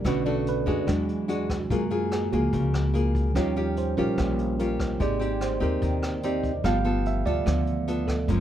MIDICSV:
0, 0, Header, 1, 5, 480
1, 0, Start_track
1, 0, Tempo, 411523
1, 61, Time_signature, 4, 2, 24, 8
1, 9800, End_track
2, 0, Start_track
2, 0, Title_t, "Nylon-string guitar"
2, 0, Program_c, 0, 24
2, 51, Note_on_c, 0, 57, 59
2, 57, Note_on_c, 0, 47, 58
2, 63, Note_on_c, 0, 62, 59
2, 66, Note_on_c, 0, 66, 64
2, 258, Note_off_c, 0, 57, 0
2, 263, Note_off_c, 0, 62, 0
2, 265, Note_off_c, 0, 66, 0
2, 299, Note_on_c, 0, 57, 54
2, 300, Note_on_c, 0, 62, 59
2, 307, Note_on_c, 0, 66, 69
2, 742, Note_off_c, 0, 57, 0
2, 742, Note_off_c, 0, 62, 0
2, 746, Note_off_c, 0, 66, 0
2, 770, Note_on_c, 0, 56, 59
2, 777, Note_on_c, 0, 62, 65
2, 787, Note_on_c, 0, 66, 65
2, 997, Note_off_c, 0, 47, 0
2, 1013, Note_on_c, 0, 52, 52
2, 1458, Note_off_c, 0, 56, 0
2, 1461, Note_off_c, 0, 62, 0
2, 1467, Note_off_c, 0, 66, 0
2, 1496, Note_on_c, 0, 56, 63
2, 1502, Note_on_c, 0, 62, 60
2, 1503, Note_on_c, 0, 66, 65
2, 1822, Note_off_c, 0, 56, 0
2, 1824, Note_off_c, 0, 62, 0
2, 1825, Note_off_c, 0, 66, 0
2, 1954, Note_off_c, 0, 52, 0
2, 1987, Note_on_c, 0, 54, 53
2, 1991, Note_on_c, 0, 58, 54
2, 1998, Note_on_c, 0, 65, 54
2, 1998, Note_on_c, 0, 68, 60
2, 2126, Note_off_c, 0, 58, 0
2, 2131, Note_off_c, 0, 68, 0
2, 2132, Note_off_c, 0, 65, 0
2, 2222, Note_on_c, 0, 58, 50
2, 2227, Note_on_c, 0, 65, 66
2, 2233, Note_on_c, 0, 68, 73
2, 2664, Note_off_c, 0, 58, 0
2, 2667, Note_off_c, 0, 65, 0
2, 2670, Note_off_c, 0, 68, 0
2, 2717, Note_on_c, 0, 58, 62
2, 2719, Note_on_c, 0, 65, 66
2, 2725, Note_on_c, 0, 68, 60
2, 2922, Note_off_c, 0, 54, 0
2, 2957, Note_on_c, 0, 49, 53
2, 3392, Note_off_c, 0, 58, 0
2, 3392, Note_off_c, 0, 65, 0
2, 3396, Note_off_c, 0, 68, 0
2, 3425, Note_on_c, 0, 58, 65
2, 3431, Note_on_c, 0, 65, 57
2, 3440, Note_on_c, 0, 68, 65
2, 3886, Note_off_c, 0, 58, 0
2, 3887, Note_off_c, 0, 49, 0
2, 3887, Note_off_c, 0, 65, 0
2, 3893, Note_off_c, 0, 68, 0
2, 3912, Note_on_c, 0, 51, 56
2, 3913, Note_on_c, 0, 61, 55
2, 3917, Note_on_c, 0, 65, 60
2, 3923, Note_on_c, 0, 67, 57
2, 4110, Note_off_c, 0, 61, 0
2, 4112, Note_off_c, 0, 65, 0
2, 4115, Note_off_c, 0, 67, 0
2, 4157, Note_on_c, 0, 61, 56
2, 4160, Note_on_c, 0, 65, 62
2, 4166, Note_on_c, 0, 67, 64
2, 4592, Note_off_c, 0, 61, 0
2, 4593, Note_off_c, 0, 65, 0
2, 4597, Note_off_c, 0, 67, 0
2, 4638, Note_on_c, 0, 61, 69
2, 4644, Note_on_c, 0, 65, 70
2, 4651, Note_on_c, 0, 67, 61
2, 4845, Note_off_c, 0, 51, 0
2, 4876, Note_on_c, 0, 46, 49
2, 5313, Note_off_c, 0, 61, 0
2, 5316, Note_off_c, 0, 65, 0
2, 5320, Note_off_c, 0, 67, 0
2, 5365, Note_on_c, 0, 61, 58
2, 5370, Note_on_c, 0, 65, 54
2, 5376, Note_on_c, 0, 67, 60
2, 5807, Note_off_c, 0, 46, 0
2, 5815, Note_off_c, 0, 61, 0
2, 5819, Note_off_c, 0, 65, 0
2, 5820, Note_off_c, 0, 67, 0
2, 5829, Note_on_c, 0, 56, 56
2, 5836, Note_on_c, 0, 60, 57
2, 5838, Note_on_c, 0, 63, 56
2, 5838, Note_on_c, 0, 67, 62
2, 6030, Note_off_c, 0, 63, 0
2, 6031, Note_off_c, 0, 60, 0
2, 6033, Note_off_c, 0, 67, 0
2, 6060, Note_on_c, 0, 60, 56
2, 6069, Note_on_c, 0, 63, 53
2, 6079, Note_on_c, 0, 67, 58
2, 6504, Note_off_c, 0, 60, 0
2, 6509, Note_off_c, 0, 63, 0
2, 6514, Note_off_c, 0, 67, 0
2, 6535, Note_on_c, 0, 60, 67
2, 6535, Note_on_c, 0, 63, 59
2, 6545, Note_on_c, 0, 67, 61
2, 6764, Note_off_c, 0, 56, 0
2, 6791, Note_on_c, 0, 51, 53
2, 7221, Note_off_c, 0, 63, 0
2, 7222, Note_off_c, 0, 60, 0
2, 7227, Note_off_c, 0, 67, 0
2, 7272, Note_on_c, 0, 60, 64
2, 7280, Note_on_c, 0, 63, 67
2, 7290, Note_on_c, 0, 67, 59
2, 7591, Note_off_c, 0, 60, 0
2, 7596, Note_off_c, 0, 63, 0
2, 7598, Note_off_c, 0, 67, 0
2, 7724, Note_off_c, 0, 51, 0
2, 7743, Note_on_c, 0, 55, 53
2, 7752, Note_on_c, 0, 59, 56
2, 7754, Note_on_c, 0, 65, 57
2, 7763, Note_on_c, 0, 69, 66
2, 7887, Note_off_c, 0, 59, 0
2, 7891, Note_off_c, 0, 65, 0
2, 7893, Note_off_c, 0, 69, 0
2, 7982, Note_on_c, 0, 59, 61
2, 7986, Note_on_c, 0, 65, 61
2, 7992, Note_on_c, 0, 69, 72
2, 8425, Note_off_c, 0, 59, 0
2, 8426, Note_off_c, 0, 65, 0
2, 8430, Note_off_c, 0, 69, 0
2, 8475, Note_on_c, 0, 59, 73
2, 8479, Note_on_c, 0, 65, 61
2, 8479, Note_on_c, 0, 69, 70
2, 8681, Note_off_c, 0, 55, 0
2, 8714, Note_on_c, 0, 50, 48
2, 9152, Note_off_c, 0, 59, 0
2, 9152, Note_off_c, 0, 69, 0
2, 9153, Note_off_c, 0, 65, 0
2, 9188, Note_on_c, 0, 59, 62
2, 9194, Note_on_c, 0, 65, 59
2, 9196, Note_on_c, 0, 69, 67
2, 9509, Note_off_c, 0, 59, 0
2, 9512, Note_off_c, 0, 65, 0
2, 9512, Note_off_c, 0, 69, 0
2, 9645, Note_off_c, 0, 50, 0
2, 9675, Note_on_c, 0, 42, 54
2, 9678, Note_on_c, 0, 53, 55
2, 9679, Note_on_c, 0, 58, 58
2, 9683, Note_on_c, 0, 61, 61
2, 9800, Note_off_c, 0, 42, 0
2, 9800, Note_off_c, 0, 53, 0
2, 9800, Note_off_c, 0, 58, 0
2, 9800, Note_off_c, 0, 61, 0
2, 9800, End_track
3, 0, Start_track
3, 0, Title_t, "Tine electric piano"
3, 0, Program_c, 1, 4
3, 0, Control_c, 1, 64, 127
3, 67, Note_on_c, 1, 50, 38
3, 70, Note_on_c, 1, 57, 34
3, 76, Control_c, 1, 64, 0
3, 76, Note_on_c, 1, 61, 47
3, 89, Note_on_c, 1, 71, 71
3, 301, Control_c, 1, 64, 127
3, 308, Note_off_c, 1, 71, 0
3, 312, Note_on_c, 1, 69, 64
3, 384, Note_off_c, 1, 50, 0
3, 385, Note_off_c, 1, 57, 0
3, 388, Note_off_c, 1, 61, 0
3, 540, Note_off_c, 1, 69, 0
3, 568, Note_on_c, 1, 71, 69
3, 788, Note_off_c, 1, 71, 0
3, 794, Note_on_c, 1, 68, 67
3, 1029, Note_on_c, 1, 54, 50
3, 1037, Note_on_c, 1, 56, 43
3, 1038, Control_c, 1, 64, 0
3, 1042, Note_on_c, 1, 62, 55
3, 1235, Note_off_c, 1, 68, 0
3, 1245, Control_c, 1, 64, 127
3, 1536, Note_on_c, 1, 66, 58
3, 1710, Note_off_c, 1, 54, 0
3, 1714, Note_off_c, 1, 56, 0
3, 1717, Note_off_c, 1, 62, 0
3, 1967, Note_off_c, 1, 66, 0
3, 1993, Note_on_c, 1, 56, 37
3, 1998, Control_c, 1, 64, 0
3, 2000, Note_on_c, 1, 58, 47
3, 2011, Note_on_c, 1, 70, 59
3, 2193, Control_c, 1, 64, 127
3, 2444, Note_off_c, 1, 70, 0
3, 2491, Note_on_c, 1, 68, 59
3, 2673, Note_off_c, 1, 56, 0
3, 2676, Note_off_c, 1, 58, 0
3, 2700, Note_on_c, 1, 53, 39
3, 2706, Note_on_c, 1, 56, 34
3, 2710, Note_off_c, 1, 68, 0
3, 2713, Note_on_c, 1, 58, 42
3, 2713, Note_on_c, 1, 66, 65
3, 2918, Note_off_c, 1, 53, 0
3, 2921, Note_off_c, 1, 56, 0
3, 2925, Note_off_c, 1, 58, 0
3, 2941, Note_off_c, 1, 66, 0
3, 3443, Note_on_c, 1, 70, 56
3, 3880, Note_off_c, 1, 70, 0
3, 3895, Note_on_c, 1, 53, 38
3, 3902, Note_on_c, 1, 55, 38
3, 3907, Note_on_c, 1, 61, 46
3, 3917, Control_c, 1, 64, 0
3, 3918, Note_on_c, 1, 73, 63
3, 4108, Control_c, 1, 64, 127
3, 4358, Note_off_c, 1, 73, 0
3, 4409, Note_on_c, 1, 72, 60
3, 4583, Note_off_c, 1, 53, 0
3, 4587, Note_off_c, 1, 55, 0
3, 4590, Note_off_c, 1, 61, 0
3, 4630, Note_off_c, 1, 72, 0
3, 4634, Note_on_c, 1, 53, 39
3, 4636, Note_on_c, 1, 61, 44
3, 4639, Note_on_c, 1, 55, 37
3, 4643, Note_on_c, 1, 70, 69
3, 4845, Note_off_c, 1, 53, 0
3, 4847, Note_off_c, 1, 61, 0
3, 4848, Note_off_c, 1, 55, 0
3, 4867, Note_off_c, 1, 70, 0
3, 5358, Note_on_c, 1, 70, 61
3, 5798, Note_off_c, 1, 70, 0
3, 5836, Note_on_c, 1, 58, 33
3, 5840, Control_c, 1, 64, 0
3, 5847, Note_on_c, 1, 60, 43
3, 5853, Note_on_c, 1, 74, 67
3, 6016, Control_c, 1, 64, 127
3, 6150, Note_off_c, 1, 58, 0
3, 6155, Note_off_c, 1, 60, 0
3, 6286, Note_off_c, 1, 74, 0
3, 6326, Note_on_c, 1, 72, 71
3, 6549, Note_off_c, 1, 72, 0
3, 6564, Note_on_c, 1, 70, 68
3, 6787, Note_off_c, 1, 70, 0
3, 7287, Note_on_c, 1, 74, 59
3, 7723, Note_off_c, 1, 74, 0
3, 7737, Note_on_c, 1, 53, 40
3, 7743, Note_on_c, 1, 57, 37
3, 7755, Note_on_c, 1, 59, 50
3, 7759, Note_on_c, 1, 77, 72
3, 7762, Control_c, 1, 64, 0
3, 7945, Control_c, 1, 64, 127
3, 8199, Note_off_c, 1, 77, 0
3, 8246, Note_on_c, 1, 76, 65
3, 8467, Note_on_c, 1, 74, 78
3, 8468, Note_off_c, 1, 76, 0
3, 8611, Note_off_c, 1, 74, 0
3, 8687, Note_off_c, 1, 53, 0
3, 8692, Note_off_c, 1, 57, 0
3, 8701, Note_on_c, 1, 53, 44
3, 8702, Note_off_c, 1, 59, 0
3, 8706, Note_on_c, 1, 57, 38
3, 8716, Note_on_c, 1, 59, 50
3, 8919, Note_off_c, 1, 53, 0
3, 8921, Note_off_c, 1, 57, 0
3, 8927, Note_off_c, 1, 59, 0
3, 9413, Note_on_c, 1, 69, 65
3, 9651, Note_off_c, 1, 69, 0
3, 9651, Note_on_c, 1, 53, 38
3, 9662, Note_on_c, 1, 56, 42
3, 9670, Note_on_c, 1, 58, 47
3, 9679, Control_c, 1, 64, 0
3, 9680, Note_on_c, 1, 65, 44
3, 9800, Note_off_c, 1, 53, 0
3, 9800, Note_off_c, 1, 56, 0
3, 9800, Note_off_c, 1, 58, 0
3, 9800, Note_off_c, 1, 65, 0
3, 9800, End_track
4, 0, Start_track
4, 0, Title_t, "Upright bass"
4, 0, Program_c, 2, 32
4, 57, Note_on_c, 2, 35, 91
4, 733, Note_off_c, 2, 35, 0
4, 779, Note_on_c, 2, 42, 89
4, 1004, Note_off_c, 2, 42, 0
4, 1024, Note_on_c, 2, 40, 93
4, 1937, Note_off_c, 2, 40, 0
4, 1988, Note_on_c, 2, 42, 86
4, 2659, Note_off_c, 2, 42, 0
4, 2717, Note_on_c, 2, 37, 83
4, 2934, Note_off_c, 2, 37, 0
4, 2951, Note_on_c, 2, 37, 95
4, 3861, Note_off_c, 2, 37, 0
4, 3916, Note_on_c, 2, 39, 88
4, 4583, Note_off_c, 2, 39, 0
4, 4636, Note_on_c, 2, 34, 77
4, 4854, Note_off_c, 2, 34, 0
4, 4876, Note_on_c, 2, 34, 97
4, 5784, Note_off_c, 2, 34, 0
4, 5834, Note_on_c, 2, 32, 82
4, 6503, Note_off_c, 2, 32, 0
4, 6552, Note_on_c, 2, 39, 80
4, 6772, Note_off_c, 2, 39, 0
4, 6791, Note_on_c, 2, 39, 87
4, 7701, Note_off_c, 2, 39, 0
4, 7746, Note_on_c, 2, 31, 94
4, 8419, Note_off_c, 2, 31, 0
4, 8468, Note_on_c, 2, 38, 83
4, 8690, Note_off_c, 2, 38, 0
4, 8707, Note_on_c, 2, 38, 98
4, 9619, Note_off_c, 2, 38, 0
4, 9663, Note_on_c, 2, 30, 99
4, 9800, Note_off_c, 2, 30, 0
4, 9800, End_track
5, 0, Start_track
5, 0, Title_t, "Drums"
5, 56, Note_on_c, 9, 36, 55
5, 58, Note_on_c, 9, 37, 57
5, 58, Note_on_c, 9, 42, 43
5, 173, Note_off_c, 9, 36, 0
5, 175, Note_off_c, 9, 37, 0
5, 175, Note_off_c, 9, 42, 0
5, 298, Note_on_c, 9, 42, 23
5, 415, Note_off_c, 9, 42, 0
5, 543, Note_on_c, 9, 42, 39
5, 660, Note_off_c, 9, 42, 0
5, 780, Note_on_c, 9, 36, 49
5, 784, Note_on_c, 9, 42, 28
5, 897, Note_off_c, 9, 36, 0
5, 900, Note_off_c, 9, 42, 0
5, 1021, Note_on_c, 9, 36, 58
5, 1021, Note_on_c, 9, 37, 59
5, 1021, Note_on_c, 9, 42, 39
5, 1138, Note_off_c, 9, 36, 0
5, 1138, Note_off_c, 9, 37, 0
5, 1138, Note_off_c, 9, 42, 0
5, 1266, Note_on_c, 9, 42, 31
5, 1383, Note_off_c, 9, 42, 0
5, 1504, Note_on_c, 9, 42, 47
5, 1621, Note_off_c, 9, 42, 0
5, 1745, Note_on_c, 9, 36, 56
5, 1747, Note_on_c, 9, 37, 56
5, 1747, Note_on_c, 9, 42, 29
5, 1862, Note_off_c, 9, 36, 0
5, 1864, Note_off_c, 9, 37, 0
5, 1864, Note_off_c, 9, 42, 0
5, 1988, Note_on_c, 9, 36, 64
5, 1992, Note_on_c, 9, 42, 44
5, 2104, Note_off_c, 9, 36, 0
5, 2108, Note_off_c, 9, 42, 0
5, 2229, Note_on_c, 9, 42, 25
5, 2346, Note_off_c, 9, 42, 0
5, 2467, Note_on_c, 9, 37, 63
5, 2467, Note_on_c, 9, 42, 46
5, 2584, Note_off_c, 9, 37, 0
5, 2584, Note_off_c, 9, 42, 0
5, 2710, Note_on_c, 9, 42, 31
5, 2826, Note_off_c, 9, 42, 0
5, 2949, Note_on_c, 9, 36, 59
5, 2949, Note_on_c, 9, 42, 43
5, 3065, Note_off_c, 9, 42, 0
5, 3066, Note_off_c, 9, 36, 0
5, 3195, Note_on_c, 9, 37, 64
5, 3195, Note_on_c, 9, 42, 29
5, 3312, Note_off_c, 9, 37, 0
5, 3312, Note_off_c, 9, 42, 0
5, 3438, Note_on_c, 9, 42, 44
5, 3555, Note_off_c, 9, 42, 0
5, 3674, Note_on_c, 9, 36, 53
5, 3679, Note_on_c, 9, 42, 28
5, 3790, Note_off_c, 9, 36, 0
5, 3795, Note_off_c, 9, 42, 0
5, 3912, Note_on_c, 9, 36, 56
5, 3914, Note_on_c, 9, 37, 61
5, 3914, Note_on_c, 9, 42, 41
5, 4029, Note_off_c, 9, 36, 0
5, 4030, Note_off_c, 9, 37, 0
5, 4030, Note_off_c, 9, 42, 0
5, 4155, Note_on_c, 9, 42, 26
5, 4271, Note_off_c, 9, 42, 0
5, 4390, Note_on_c, 9, 42, 39
5, 4507, Note_off_c, 9, 42, 0
5, 4630, Note_on_c, 9, 42, 26
5, 4632, Note_on_c, 9, 36, 54
5, 4746, Note_off_c, 9, 42, 0
5, 4749, Note_off_c, 9, 36, 0
5, 4874, Note_on_c, 9, 36, 66
5, 4874, Note_on_c, 9, 37, 67
5, 4874, Note_on_c, 9, 42, 47
5, 4990, Note_off_c, 9, 36, 0
5, 4991, Note_off_c, 9, 37, 0
5, 4991, Note_off_c, 9, 42, 0
5, 5116, Note_on_c, 9, 42, 28
5, 5233, Note_off_c, 9, 42, 0
5, 5356, Note_on_c, 9, 42, 44
5, 5472, Note_off_c, 9, 42, 0
5, 5593, Note_on_c, 9, 36, 61
5, 5596, Note_on_c, 9, 37, 63
5, 5596, Note_on_c, 9, 42, 28
5, 5710, Note_off_c, 9, 36, 0
5, 5713, Note_off_c, 9, 37, 0
5, 5713, Note_off_c, 9, 42, 0
5, 5834, Note_on_c, 9, 36, 54
5, 5839, Note_on_c, 9, 42, 44
5, 5951, Note_off_c, 9, 36, 0
5, 5956, Note_off_c, 9, 42, 0
5, 6079, Note_on_c, 9, 42, 28
5, 6196, Note_off_c, 9, 42, 0
5, 6309, Note_on_c, 9, 37, 56
5, 6309, Note_on_c, 9, 42, 43
5, 6426, Note_off_c, 9, 37, 0
5, 6426, Note_off_c, 9, 42, 0
5, 6552, Note_on_c, 9, 42, 31
5, 6668, Note_off_c, 9, 42, 0
5, 6788, Note_on_c, 9, 36, 61
5, 6789, Note_on_c, 9, 42, 45
5, 6904, Note_off_c, 9, 36, 0
5, 6905, Note_off_c, 9, 42, 0
5, 7029, Note_on_c, 9, 37, 68
5, 7029, Note_on_c, 9, 42, 30
5, 7146, Note_off_c, 9, 37, 0
5, 7146, Note_off_c, 9, 42, 0
5, 7267, Note_on_c, 9, 42, 43
5, 7383, Note_off_c, 9, 42, 0
5, 7506, Note_on_c, 9, 36, 56
5, 7510, Note_on_c, 9, 42, 27
5, 7623, Note_off_c, 9, 36, 0
5, 7627, Note_off_c, 9, 42, 0
5, 7746, Note_on_c, 9, 36, 58
5, 7748, Note_on_c, 9, 37, 64
5, 7748, Note_on_c, 9, 42, 46
5, 7862, Note_off_c, 9, 36, 0
5, 7864, Note_off_c, 9, 37, 0
5, 7864, Note_off_c, 9, 42, 0
5, 7988, Note_on_c, 9, 42, 24
5, 8104, Note_off_c, 9, 42, 0
5, 8229, Note_on_c, 9, 42, 39
5, 8345, Note_off_c, 9, 42, 0
5, 8463, Note_on_c, 9, 36, 52
5, 8466, Note_on_c, 9, 42, 27
5, 8579, Note_off_c, 9, 36, 0
5, 8582, Note_off_c, 9, 42, 0
5, 8702, Note_on_c, 9, 36, 59
5, 8707, Note_on_c, 9, 37, 61
5, 8707, Note_on_c, 9, 42, 42
5, 8819, Note_off_c, 9, 36, 0
5, 8823, Note_off_c, 9, 37, 0
5, 8823, Note_off_c, 9, 42, 0
5, 8943, Note_on_c, 9, 42, 28
5, 9060, Note_off_c, 9, 42, 0
5, 9189, Note_on_c, 9, 42, 44
5, 9306, Note_off_c, 9, 42, 0
5, 9422, Note_on_c, 9, 36, 51
5, 9428, Note_on_c, 9, 37, 64
5, 9428, Note_on_c, 9, 42, 25
5, 9539, Note_off_c, 9, 36, 0
5, 9544, Note_off_c, 9, 37, 0
5, 9544, Note_off_c, 9, 42, 0
5, 9661, Note_on_c, 9, 36, 54
5, 9662, Note_on_c, 9, 42, 44
5, 9778, Note_off_c, 9, 36, 0
5, 9779, Note_off_c, 9, 42, 0
5, 9800, End_track
0, 0, End_of_file